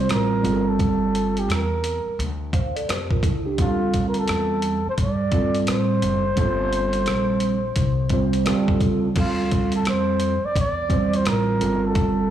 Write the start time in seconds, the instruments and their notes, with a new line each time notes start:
Already playing: tine electric piano G3 C4 F4 C5
0.00 flugelhorn C5
0.09 upright bass A1, flugelhorn A#4, cross-stick, closed hi-hat
0.43 upright bass G1, tine electric piano G3 C4 F4 G#4, closed hi-hat
0.52 tine electric piano A4
0.69 flugelhorn A4
0.79 kick, closed hi-hat
1.15 closed hi-hat
1.37 flugelhorn G4, closed hi-hat
1.49 upright bass E2, cross-stick, closed hi-hat
1.53 flugelhorn A#4
1.84 closed hi-hat
2.06 muted upright bass stroke
2.19 upright bass D2, closed hi-hat
2.53 tine electric piano C5 F5, kick, closed hi-hat
2.76 tine electric piano A4 D5, closed hi-hat
2.88 upright bass F2, tine electric piano G4 C5, cross-stick, closed hi-hat
3.10 tine electric piano F4 A#4, kick
3.23 upright bass C#2, tine electric piano E4 A4, kick, closed hi-hat
3.46 tine electric piano D4 G4
3.58 upright bass D2, tine electric piano G3 C4 F4 A4, flugelhorn F4, kick, closed hi-hat
3.94 kick, closed hi-hat
4.08 flugelhorn A#4
4.14 closed hi-hat
4.19 flugelhorn A4
4.28 upright bass E2, cross-stick, closed hi-hat
4.62 closed hi-hat
4.86 flugelhorn C5, muted upright bass stroke
4.98 upright bass G2, kick, closed hi-hat
5.03 flugelhorn D5
5.31 tine electric piano G3 C4 F4 A4, kick, closed hi-hat
5.55 closed hi-hat
5.67 upright bass A2, cross-stick, closed hi-hat
5.71 flugelhorn C5
6.02 upright bass F#1, closed hi-hat
6.36 upright bass G1, tine electric piano G3 C4 F4 A4, kick, closed hi-hat
6.73 closed hi-hat
6.93 closed hi-hat
7.06 upright bass A#1, cross-stick, closed hi-hat
7.40 closed hi-hat
7.76 upright bass C2, kick, closed hi-hat
8.09 tine electric piano G3 C4 F4, kick, closed hi-hat
8.14 tine electric piano C5
8.33 closed hi-hat
8.45 upright bass D2, tine electric piano G3 C4 F4 A4, cross-stick, closed hi-hat
8.68 kick
8.80 upright bass C#2, kick, closed hi-hat
9.14 upright bass D2, tine electric piano G3 C4 F4 A4, kick, closed hi-hat, crash
9.20 flugelhorn F4
9.51 kick, closed hi-hat
9.72 flugelhorn A4, closed hi-hat
9.85 upright bass F2, flugelhorn C5, cross-stick, closed hi-hat
10.20 closed hi-hat
10.43 flugelhorn D5, muted upright bass stroke
10.56 upright bass E2, kick, closed hi-hat
10.60 flugelhorn D5
10.89 tine electric piano G3 C4 F4 C5, kick, closed hi-hat
11.13 flugelhorn C5, closed hi-hat
11.25 upright bass A1, flugelhorn A#4, cross-stick, closed hi-hat
11.59 upright bass G1, tine electric piano G3 C4 F4 A4, closed hi-hat
11.86 flugelhorn A4
11.95 kick, closed hi-hat